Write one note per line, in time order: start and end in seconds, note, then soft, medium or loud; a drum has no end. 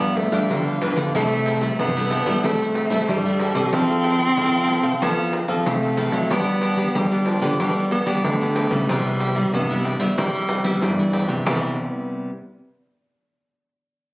0.00 0.47 G2 medium
0.00 0.29 F3 medium
0.00 0.27 G3 medium
0.00 0.18 B3 loud
0.00 0.29 B3 medium
0.00 0.30 D4 medium
0.00 0.16 G4 soft
0.00 0.16 B4 soft
0.00 0.17 F5 medium
0.00 pandeiro soft
0.17 0.52 A3 loud
0.17 muted cavaquinho stroke soft
0.17 pandeiro medium
0.32 0.77 F3 medium
0.32 0.47 G3 medium
0.32 0.77 B3 medium
0.32 0.77 D4 medium
0.32 0.65 G4 medium
0.32 0.64 B4 medium
0.32 0.64 F5 medium
0.32 pandeiro medium
0.50 0.78 D3 medium
0.50 1.12 D3 soft
0.50 0.88 G3 medium
0.50 pandeiro medium
0.67 0.80 G4 soft
0.67 0.81 B4 soft
0.67 0.81 F5 soft
0.67 pandeiro soft
0.81 0.96 E3 medium
0.81 1.09 F3 medium
0.81 1.09 B3 soft
0.81 0.97 D4 medium
0.81 1.10 D4 medium
0.81 0.97 G4 medium
0.81 0.96 B4 medium
0.81 0.96 F5 medium
0.81 pandeiro medium
0.97 1.12 D3 medium
0.97 1.13 G4 soft
0.97 1.13 B4 soft
0.97 1.13 F5 medium
0.97 pandeiro medium
1.15 1.70 C3 medium
1.15 1.76 C3 medium
1.15 1.58 G3 medium
1.15 1.58 A3 medium
1.15 1.76 A3 loud
1.15 1.30 E4 medium
1.15 1.59 E4 medium
1.15 1.30 A4 medium
1.15 1.30 C5 medium
1.15 1.30 E5 medium
1.15 pandeiro medium
1.31 1.45 A4 soft
1.31 1.46 C5 soft
1.31 1.46 E5 soft
1.31 pandeiro soft
1.46 1.61 E4 medium
1.46 1.61 A4 medium
1.46 1.61 C5 medium
1.46 1.61 E5 medium
1.46 pandeiro medium
1.61 1.89 G3 medium
1.61 1.90 A3 medium
1.61 1.90 E4 medium
1.61 muted cavaquinho stroke soft
1.61 pandeiro medium
1.79 2.41 G2 soft
1.79 2.21 C3 medium
1.79 2.46 B3 medium
1.79 pandeiro medium
1.96 2.23 G3 medium
1.96 2.23 A3 medium
1.96 2.24 E4 medium
1.96 2.11 A4 soft
1.96 2.11 C5 soft
1.96 2.11 E5 medium
1.96 pandeiro soft
2.11 2.26 E4 soft
2.11 2.26 A4 medium
2.11 2.26 C5 soft
2.11 2.25 E5 medium
2.11 pandeiro medium
2.26 2.41 G3 medium
2.26 2.38 G3 medium
2.26 2.38 A3 medium
2.26 2.39 E4 medium
2.26 2.43 A4 medium
2.26 2.42 C5 medium
2.26 2.42 E5 medium
2.26 pandeiro medium
2.44 3.05 C3 medium
2.44 2.75 G3 medium
2.44 3.11 A3 loud
2.44 2.75 A3 medium
2.44 2.85 C4 medium
2.44 2.59 E4 medium
2.44 2.75 E4 medium
2.44 2.59 A4 medium
2.44 2.60 C5 medium
2.44 2.60 E5 medium
2.44 pandeiro medium
2.61 2.75 A4 soft
2.61 2.75 C5 soft
2.61 2.75 E5 medium
2.61 pandeiro soft
2.75 muted cavaquinho stroke soft
2.75 pandeiro medium
2.90 3.18 G3 medium
2.90 3.19 A3 medium
2.90 3.05 C4 medium
2.90 3.19 E4 medium
2.90 3.23 A4 medium
2.90 3.23 C5 medium
2.90 3.22 E5 medium
2.90 pandeiro medium
3.08 3.70 G2 medium
3.08 3.50 G3 medium
3.08 3.76 G3 medium
3.08 pandeiro medium
3.25 3.52 G3 medium
3.25 3.52 A3 medium
3.25 3.53 E4 medium
3.25 3.39 A4 soft
3.25 3.40 C5 soft
3.25 3.40 E5 soft
3.25 pandeiro soft
3.40 3.55 E4 medium
3.40 3.55 A4 medium
3.40 3.55 C5 medium
3.40 3.54 E5 medium
3.40 pandeiro medium
3.55 3.69 C3 medium
3.55 3.89 C4 medium
3.55 3.89 E4 medium
3.55 3.90 A4 medium
3.55 3.72 A4 soft
3.55 3.71 C5 soft
3.55 3.71 E5 medium
3.55 pandeiro medium
3.73 4.28 F3 loud
3.73 4.35 F3 medium
3.73 5.02 C4 loud
3.73 3.88 E4 medium
3.73 3.88 A4 medium
3.73 3.89 C5 medium
3.73 3.89 F5 medium
3.73 pandeiro medium
3.90 4.33 C4 medium
3.90 4.33 E4 medium
3.90 4.33 A4 medium
3.90 4.04 A4 soft
3.90 4.04 C5 soft
3.90 4.04 F5 medium
3.90 pandeiro soft
4.04 4.18 E4 medium
4.04 4.19 A4 medium
4.04 4.19 C5 medium
4.04 4.19 F5 medium
4.04 pandeiro medium
4.19 muted cavaquinho stroke soft
4.19 pandeiro medium
4.37 4.99 C3 medium
4.37 4.79 F3 medium
4.37 4.57 C4 medium
4.37 4.57 E4 medium
4.37 4.57 A4 medium
4.37 pandeiro medium
4.54 4.68 A4 soft
4.54 4.69 C5 soft
4.54 4.69 F5 soft
4.54 pandeiro soft
4.68 4.88 C4 medium
4.68 4.88 E4 medium
4.68 4.84 E4 soft
4.68 4.88 A4 medium
4.68 4.84 A4 soft
4.68 4.83 C5 medium
4.68 4.82 F5 medium
4.68 pandeiro medium
4.83 4.98 C3 medium
4.83 5.00 A4 medium
4.83 5.00 C5 medium
4.83 4.99 F5 medium
4.83 pandeiro medium
5.02 5.63 F3 medium
5.02 5.43 F3 loud
5.02 5.37 B3 loud
5.02 5.17 E4 medium
5.02 5.32 E4 medium
5.02 5.17 A4 medium
5.02 5.33 A4 medium
5.02 5.17 C5 medium
5.02 5.17 F5 medium
5.02 pandeiro medium
5.18 5.32 A4 soft
5.18 5.32 C5 soft
5.18 5.33 F5 soft
5.18 pandeiro soft
5.33 muted cavaquinho stroke soft
5.33 pandeiro medium
5.48 5.63 F3 medium
5.48 5.93 C4 medium
5.48 5.93 A4 medium
5.48 5.81 A4 medium
5.48 5.81 C5 medium
5.48 5.80 F5 medium
5.48 pandeiro medium
5.66 6.27 C3 medium
5.66 6.08 C3 medium
5.66 6.27 A3 medium
5.66 pandeiro medium
5.83 5.96 A4 soft
5.83 5.97 C5 soft
5.83 5.97 F5 soft
5.83 pandeiro soft
5.97 6.28 C4 medium
5.97 6.13 E4 medium
5.97 6.28 E4 medium
5.97 6.13 A4 medium
5.97 6.28 A4 medium
5.97 6.12 C5 medium
5.97 6.11 F5 medium
5.97 pandeiro medium
6.12 6.28 F#3 medium
6.12 6.29 A4 soft
6.12 6.29 C5 soft
6.12 6.28 F5 soft
6.12 pandeiro medium
6.30 6.92 G3 medium
6.30 6.86 G3 loud
6.30 6.74 B3 medium
6.30 6.98 B3 loud
6.30 6.46 D4 medium
6.30 6.74 D4 medium
6.30 6.74 G4 medium
6.30 6.46 G4 medium
6.30 6.46 B4 medium
6.30 6.46 D5 medium
6.30 pandeiro medium
6.47 6.61 G4 soft
6.47 6.62 B4 soft
6.47 6.62 D5 soft
6.47 pandeiro soft
6.62 6.76 D4 medium
6.62 6.77 G4 medium
6.62 6.77 B4 medium
6.62 6.77 D5 medium
6.62 pandeiro medium
6.76 7.05 B3 medium
6.76 7.05 D4 medium
6.76 7.05 G4 medium
6.76 muted cavaquinho stroke soft
6.76 pandeiro medium
6.94 7.56 D3 medium
6.94 7.36 G3 medium
6.94 7.29 G3 medium
6.94 pandeiro medium
7.11 7.38 B3 medium
7.11 7.39 D4 medium
7.11 7.39 G4 medium
7.11 7.26 G4 soft
7.11 7.26 B4 soft
7.11 7.27 D5 soft
7.11 pandeiro soft
7.26 7.61 F3 medium
7.26 7.42 D4 soft
7.26 7.42 G4 medium
7.26 7.41 B4 medium
7.26 7.40 D5 medium
7.26 pandeiro medium
7.41 7.56 D3 loud
7.41 7.53 B3 medium
7.41 7.54 D4 medium
7.41 7.54 G4 medium
7.41 7.58 G4 medium
7.41 7.58 B4 medium
7.41 7.57 D5 medium
7.41 pandeiro medium
7.60 8.21 G3 medium
7.60 8.01 G3 loud
7.60 7.90 G3 medium
7.60 7.90 B3 medium
7.60 7.75 D4 medium
7.60 7.90 D4 medium
7.60 7.75 G4 medium
7.60 7.90 G4 medium
7.60 7.75 B4 medium
7.60 7.75 D5 medium
7.60 pandeiro medium
7.76 7.90 G4 soft
7.76 7.91 B4 soft
7.76 7.91 D5 medium
7.76 pandeiro soft
7.91 8.22 B3 medium
7.91 muted cavaquinho stroke soft
7.91 pandeiro medium
8.06 8.21 G3 medium
8.06 8.34 B3 medium
8.06 8.34 D4 medium
8.06 8.35 G4 medium
8.06 8.39 G4 medium
8.06 8.38 B4 medium
8.06 8.38 D5 medium
8.06 pandeiro medium
8.24 8.85 D3 medium
8.24 8.66 D3 medium
8.24 8.90 A3 medium
8.24 pandeiro medium
8.41 8.68 B3 medium
8.41 8.68 D4 medium
8.41 8.68 G4 medium
8.41 8.55 G4 soft
8.41 8.55 B4 soft
8.41 8.56 D5 soft
8.41 pandeiro soft
8.55 8.71 D4 medium
8.55 8.71 G4 medium
8.55 8.70 B4 medium
8.55 8.70 D5 medium
8.55 pandeiro medium
8.70 8.85 C#3 medium
8.70 9.31 G3 medium
8.70 9.31 B3 medium
8.70 9.31 E4 medium
8.70 8.87 G4 soft
8.70 8.87 B4 soft
8.70 8.87 D5 medium
8.70 pandeiro medium
8.89 9.50 C3 medium
8.89 9.44 C3 loud
8.89 9.55 G3 medium
8.89 9.04 G4 medium
8.89 9.04 B4 medium
8.89 9.04 C5 medium
8.89 9.04 E5 medium
8.89 pandeiro medium
9.06 9.19 B4 soft
9.06 9.19 C5 soft
9.06 9.20 E5 medium
9.06 pandeiro soft
9.20 9.35 G4 medium
9.20 9.35 B4 medium
9.20 9.35 C5 medium
9.20 9.35 E5 medium
9.20 pandeiro medium
9.35 9.63 G3 medium
9.35 9.63 B3 medium
9.35 9.64 E4 medium
9.35 muted cavaquinho stroke soft
9.35 pandeiro soft
9.53 10.15 G2 medium
9.53 9.95 C3 loud
9.53 9.91 B3 medium
9.53 pandeiro medium
9.70 9.97 G3 medium
9.70 9.97 B3 medium
9.70 9.98 E4 medium
9.70 9.84 B4 soft
9.70 9.84 C5 soft
9.70 9.84 E5 soft
9.70 pandeiro soft
9.84 10.00 G4 medium
9.84 9.99 B4 soft
9.84 10.00 C5 soft
9.84 9.99 E5 medium
9.84 pandeiro medium
10.00 10.12 G3 medium
10.00 10.14 G3 medium
10.00 10.12 B3 medium
10.00 10.12 E4 medium
10.00 10.16 B4 medium
10.00 10.16 C5 medium
10.00 10.16 E5 medium
10.00 pandeiro medium
10.17 10.79 C3 medium
10.17 10.48 G3 medium
10.17 10.84 G3 medium
10.17 10.59 C4 medium
10.17 10.48 E4 medium
10.17 10.32 G4 medium
10.17 10.33 B4 medium
10.17 10.33 C5 medium
10.17 10.33 E5 medium
10.17 pandeiro medium
10.35 10.49 B4 medium
10.35 10.48 C5 soft
10.35 10.49 E5 medium
10.35 pandeiro soft
10.49 muted cavaquinho stroke soft
10.49 pandeiro medium
10.64 10.92 G3 medium
10.64 10.92 B3 medium
10.64 10.79 C4 medium
10.64 10.92 E4 medium
10.64 10.96 B4 medium
10.64 10.97 C5 medium
10.64 10.96 E5 medium
10.64 pandeiro medium
10.82 11.43 G2 medium
10.82 11.47 E3 medium
10.82 11.23 G3 medium
10.82 pandeiro medium
10.99 11.42 G3 medium
10.99 11.42 B3 medium
10.99 11.42 E4 medium
10.99 11.13 B4 soft
10.99 11.12 C5 soft
10.99 11.13 E5 soft
10.99 pandeiro soft
11.13 11.29 G4 medium
11.13 11.28 B4 medium
11.13 11.28 C5 medium
11.13 11.27 E5 medium
11.13 pandeiro medium
11.28 11.43 C3 medium
11.28 11.45 B4 soft
11.28 11.45 C5 soft
11.28 11.44 E5 soft
11.28 pandeiro medium
11.46 12.30 C3 medium
11.46 11.77 C3 medium
11.46 11.77 E3 medium
11.46 12.30 G3 medium
11.46 12.30 B3 medium
11.46 12.30 E4 medium
11.46 11.72 G4 medium
11.46 11.73 B4 medium
11.46 11.72 C5 medium
11.46 11.73 E5 medium
11.46 pandeiro loud